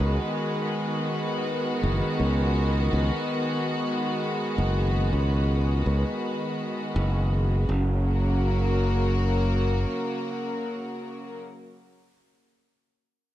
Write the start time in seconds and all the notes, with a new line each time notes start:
Already playing: D#3 G#3 B3 F#4 B4
0.00 C#2
1.83 F#1
2.20 C#2
2.93 C#2
4.58 F#1
5.13 C#2
5.86 C#2
6.96 F#1
7.68 F#1 C#3
7.80 F#3
7.90 A#3
8.01 F#4
8.13 A#4